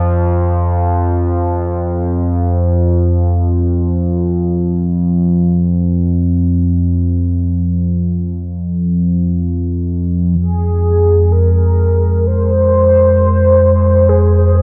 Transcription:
Already playing: synth drone F2 F3
10.39 synth drone F2 G#3, soft synth lead G#4
11.32 soft synth lead A#4
12.27 soft synth lead C5
14.09 soft synth lead G#4

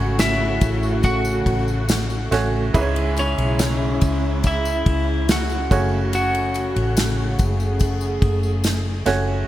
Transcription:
Already playing: upright piano C#3 A3 C#4 F#4 C#5, string section C#3 A3 F#4, lead electric guitar F#4 F#5
0.00 fingered electric bass G#1
0.19 lead electric guitar E4 E5, snare, ride, tambourine
0.61 fingered electric bass A1, kick, ride, tambourine
0.83 tambourine
1.03 lead electric guitar F#4 F#5, kick, ride, tambourine
1.25 tambourine
1.46 fingered electric bass A1, kick, ride
1.68 tambourine
1.89 snare, ride, tambourine
2.10 tambourine
2.31 fingered electric bass A1, upright piano A3 C#4 F#4 C#5, snare, ride, tambourine
2.74 fingered electric bass C#2, upright piano G#2 G#3 C#4 E4 B4, string section C#3 G#3 E4, kick, ride, tambourine
2.81 upright piano C#5
2.96 ride
3.17 lead electric guitar C#4 C#5, ride, tambourine
3.38 fingered electric bass B1, ride
3.59 snare, ride, tambourine
4.01 fingered electric bass C#2, kick, ride, tambourine
4.43 lead electric guitar E4 E5, kick, ride, tambourine
4.65 tambourine
4.86 fingered electric bass C#2, kick, ride
5.29 lead electric guitar F#4 F#5, snare, ride, tambourine
5.50 tambourine
5.71 fingered electric bass F#1, upright piano C#3 A3 C#4 F#4 C#5, string section A3 F#4, kick, ride, tambourine
6.13 lead electric guitar F#4 F#5, ride, tambourine
6.34 ride
6.54 ride, tambourine
6.76 fingered electric bass A1, ride
6.97 snare, ride, tambourine
7.39 fingered electric bass F#1, string section G#4, kick, ride, tambourine
7.60 tambourine
7.79 kick, ride, tambourine
8.01 tambourine
8.22 fingered electric bass F#1, kick, ride
8.43 tambourine
8.64 snare, ride, tambourine
9.06 fingered electric bass F#1, upright piano A3 C#4 F#4 C#5, snare, ride, tambourine

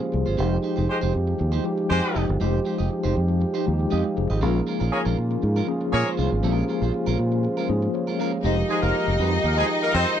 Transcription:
Already playing: french horn section C#3 G#3 F4 C5, tine electric piano F3 A#3 C#4 G4 G#4
0.01 muted clean electric guitar stroke
0.12 fingered electric bass C2, muted clean electric guitar stroke
0.26 fingered electric bass G1, clean electric guitar G#3 C#4 F4 C5
0.37 fingered electric bass F1, tine electric piano F3 G#3 D#4 G4, french horn section F3 D#4 G4, clean electric guitar G#3 D#4 G4 C5
0.63 clean electric guitar G#3 D#4 G4 C5
0.76 fingered electric bass F1, clean electric guitar G#3 D#4 G4 C5
0.88 horn section G#3 G4 C5, muted clean electric guitar stroke
1.01 fingered electric bass F1, clean electric guitar G#3 D#4 G4 C5
1.14 fingered electric bass F2, muted clean electric guitar stroke
1.27 muted clean electric guitar stroke
1.39 fingered electric bass D#2, muted clean electric guitar stroke
1.52 clean electric guitar G#3 D#4 G4 C5
1.64 tine electric piano F3 G#3 D#4 G4, muted clean electric guitar stroke
1.78 muted clean electric guitar stroke
1.90 fingered electric bass F2, horn section G#3 G4 C5, muted clean electric guitar stroke
2.03 clean electric guitar G#3 D#4 G4 D#5
2.14 fingered electric bass F1, clean electric guitar G#3 D#4 G4 D#5
2.28 fingered electric bass G1, muted clean electric guitar stroke
2.39 fingered electric bass F1, tine electric piano F3 G#3 D#4 G4, clean electric guitar G#3 D#4 G4 C5, french horn section G4
2.65 clean electric guitar G#3 D#4 G4 C5
2.78 fingered electric bass F1, clean electric guitar G#3 D#4 G4 D#5
2.90 muted clean electric guitar stroke
3.04 fingered electric bass F1, clean electric guitar G#3 D#4 G4 C5
3.15 fingered electric bass F2, muted clean electric guitar stroke
3.29 muted clean electric guitar stroke
3.41 muted clean electric guitar stroke
3.54 clean electric guitar G#3 D#4 G4 C5
3.66 fingered electric bass D#2, tine electric piano F3 G#3 D#4 F4
3.73 tine electric piano G4
3.79 muted clean electric guitar stroke
3.90 fingered electric bass F2, clean electric guitar G#3 D#4 G4 D#5, tine electric piano C5 F5
4.04 muted clean electric guitar stroke
4.17 fingered electric bass F1, tine electric piano D#4 G#4, muted clean electric guitar stroke
4.30 fingered electric bass G#1, clean electric guitar G#3 D#4 G4 D#5
4.41 fingered electric bass A#1, french horn section C#3 G#3 A#3 F4, tine electric piano F3 A#3 C#4 G#4, clean electric guitar G#3 C#4 F4 A#4
4.67 clean electric guitar G#3 C#4 F4 A#4
4.80 fingered electric bass A#1, clean electric guitar G#3 C#4 F4 A#4
4.92 horn section A#3 G#4 C#5, muted clean electric guitar stroke
5.05 fingered electric bass A#1, clean electric guitar G#3 C#4 F4 A#4
5.18 fingered electric bass A#2, muted clean electric guitar stroke
5.31 muted clean electric guitar stroke
5.42 fingered electric bass G#2, muted clean electric guitar stroke
5.56 clean electric guitar G#3 C#4 F4 A#4
5.67 tine electric piano F3 A#3 C#4 G#4, muted clean electric guitar stroke
5.81 muted clean electric guitar stroke
5.93 fingered electric bass A#2, horn section A#3 G#4 C#5, muted clean electric guitar stroke
6.06 clean electric guitar G#3 C#4 F4 C5
6.17 fingered electric bass C2, clean electric guitar G#3 C#4 F4 C5
6.31 fingered electric bass G#1, muted clean electric guitar stroke
6.42 fingered electric bass A#1, tine electric piano F3 A#3 C#4 G4, clean electric guitar G#3 C#4 F4 A#4, french horn section C5
6.50 tine electric piano G#4
6.68 clean electric guitar G#3 C#4 F4 A#4
6.82 fingered electric bass A#1, clean electric guitar G#3 C#4 F4 C5
6.93 muted clean electric guitar stroke
7.06 fingered electric bass A#1, clean electric guitar G#3 C#4 F4 A#4
7.18 fingered electric bass A#2, muted clean electric guitar stroke
7.32 muted clean electric guitar stroke
7.44 muted clean electric guitar stroke
7.57 clean electric guitar G#3 C#4 F4 A#4
7.68 fingered electric bass G#2, tine electric piano F3 A#3 C#4 G#4, muted clean electric guitar stroke
7.82 muted clean electric guitar stroke
7.94 tine electric piano G#4 C#5, muted clean electric guitar stroke
8.07 clean electric guitar G#3 C#4 F4 A#4
8.19 clean electric guitar G#3 C#4 F4 A#4, tine electric piano C5 F5
8.32 muted clean electric guitar stroke
8.43 fingered electric bass F1, french horn section D#3 G#3 F4 G4, tine electric piano F3 G#3 D#4 G4, clean electric guitar G#3 D#4 G4 C5, string section D#4 D#5
8.58 muted clean electric guitar stroke
8.69 horn section G#3 G#4, clean electric guitar G#3 D#4 G4 C5
8.82 fingered electric bass F1, clean electric guitar G#3 D#4 G4 C5, horn section A#3 A#4
9.07 fingered electric bass F1, muted clean electric guitar stroke
9.19 fingered electric bass F2, clean electric guitar G#3 D#4 G4 C5
9.32 muted clean electric guitar stroke
9.44 fingered electric bass D#2, horn section A#3 A#4, muted clean electric guitar stroke
9.57 horn section G#3 G#4, clean electric guitar G#3 D#4 G4 C5
9.69 clean electric guitar G#3 D#4 G4 D#5
9.82 horn section A#3 A#4, muted clean electric guitar stroke
9.94 fingered electric bass F2, horn section C4 C5
10.08 muted clean electric guitar stroke

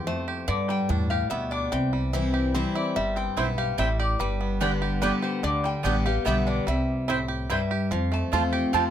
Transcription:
Already playing: upright bass F2, five-string banjo F4 G4
0.07 steel-string acoustic guitar F2, five-string banjo A3, resonator guitar played with a steel bar C5
0.28 five-string banjo G4
0.48 steel-string acoustic guitar G2, upright bass G2, five-string banjo D3, resonator guitar played with a steel bar D5
0.69 five-string banjo G3, resonator guitar played with a steel bar G5
0.89 upright bass E2, steel-string acoustic guitar A2, five-string banjo D4
1.10 five-string banjo G4, resonator guitar played with a steel bar F5
1.30 upright bass D2, steel-string acoustic guitar B2, five-string banjo B3, resonator guitar played with a steel bar E5
1.51 five-string banjo D4, resonator guitar played with a steel bar D5
1.72 upright bass C2, steel-string acoustic guitar C3, five-string banjo E3, resonator guitar played with a steel bar G5
1.93 five-string banjo G3
2.13 steel-string acoustic guitar E3 G3 C4 E4, five-string banjo E4
2.34 five-string banjo G4
2.55 steel-string acoustic guitar E3 G3 C4 E4, five-string banjo C4, resonator guitar played with a steel bar C5
2.75 five-string banjo E4, resonator guitar played with a steel bar D5
2.96 upright bass G1, steel-string acoustic guitar G2, five-string banjo G3, resonator guitar played with a steel bar E5
3.16 five-string banjo C4, resonator guitar played with a steel bar G5
3.37 upright bass B1, steel-string acoustic guitar B3, mandolin C4 E4 C5 G5, five-string banjo E4
3.58 five-string banjo G4, resonator guitar played with a steel bar F5
3.78 upright bass A1, steel-string acoustic guitar A2, five-string banjo G3, mandolin C4 E4 C5 G5, resonator guitar played with a steel bar E5
4.00 five-string banjo G4, resonator guitar played with a steel bar D5
4.19 upright bass G1, steel-string acoustic guitar G2, five-string banjo G3, resonator guitar played with a steel bar B4
4.41 five-string banjo B3
4.60 steel-string acoustic guitar D3 G3 B3 G4, mandolin B3 G4 D5 G5, five-string banjo D4
4.82 five-string banjo G4
5.01 steel-string acoustic guitar D3 G3 B3 G4, five-string banjo G3, mandolin B3 G4 D5 G5, resonator guitar played with a steel bar B4
5.22 five-string banjo G4, resonator guitar played with a steel bar C5
5.43 upright bass D2, five-string banjo D3, steel-string acoustic guitar D3, resonator guitar played with a steel bar D5
5.64 five-string banjo G3, resonator guitar played with a steel bar G5
5.83 upright bass A1, steel-string acoustic guitar D3 G3 B3 G4, mandolin B3 G4 D5 G5, five-string banjo D4
6.06 steel-string acoustic guitar B3 G4, five-string banjo G4, resonator guitar played with a steel bar F5
6.25 upright bass B1, steel-string acoustic guitar D3 G3 B3 G4, mandolin B3 G4 D5 G5, five-string banjo B3, resonator guitar played with a steel bar E5
6.47 five-string banjo D4, resonator guitar played with a steel bar D5
6.67 upright bass C2, steel-string acoustic guitar C3, five-string banjo G3, resonator guitar played with a steel bar E5
7.08 steel-string acoustic guitar A2, mandolin C4 E4 C5 G5, five-string banjo E4
7.28 five-string banjo G4
7.50 steel-string acoustic guitar G2, five-string banjo G3, mandolin C4 E4 C5 G5, resonator guitar played with a steel bar E5
7.71 five-string banjo G4
7.91 upright bass F2, steel-string acoustic guitar F2, five-string banjo F3, resonator guitar played with a steel bar F5
8.12 five-string banjo A3, resonator guitar played with a steel bar A5
8.32 upright bass E2, steel-string acoustic guitar A3 C4 F4, mandolin C4 F4 C5 A5, five-string banjo F4
8.53 five-string banjo G4, resonator guitar played with a steel bar G5
8.73 upright bass F2, steel-string acoustic guitar F3 A3 C4 F4, mandolin C4 F4 C5 A5, five-string banjo C4, resonator guitar played with a steel bar F5

